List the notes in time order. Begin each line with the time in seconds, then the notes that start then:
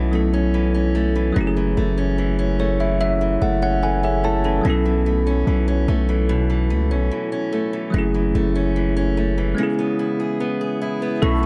Already playing: B1 B2 E3 F#3 A3 B3 C#4 E4 A4
0.11 F#3 A3 B3 C#4 E4
0.15 A4
0.34 C#4
0.54 E3
0.74 C#4
0.95 A3
1.16 E3
1.32 F#1 F#2 F#3 A3
1.37 C#4 E4
1.41 G4
1.47 G#4
1.57 E3
1.77 F#1 A3
1.98 C#4
2.18 E3
2.39 C#4
2.59 A3 C#5
2.80 E3 E5
3.00 F#2 E5
3.21 E3
3.41 F#1 A3 F#5
3.62 C#4 F#5
3.83 E3 A4 F#5 G#5
4.03 C#4 G#4 E5
4.24 A3 E4 C#5 A5
4.44 E3 C#4 A4
4.61 B1 B2 F#3 B3
4.66 C#4 E4
4.70 A4
4.86 E3
5.06 A3
5.27 C#4
5.47 B1 E3
5.68 C#4
5.88 B1 A3
6.09 E3
6.29 B2
6.50 E3
6.70 C#2 A3
6.91 B1 C#4
7.11 E3
7.32 C#4
7.53 A3
7.73 E3
7.90 F#1 F#2 F#3 A3
7.94 C#4 E4
7.99 G#4
8.14 E3
8.34 F#1 A3
8.55 C#4
8.76 E3
8.97 C#4
9.17 A3
9.38 E3
9.55 C#3 G#3 B3
9.59 C#4 E4
9.63 G#4
9.79 B3
9.99 E4
10.20 G#4
10.40 B3
10.61 G#4
10.81 E4
11.02 B3
11.22 B1 B2 A3 C#4 E4 A4 E5 B5 C#6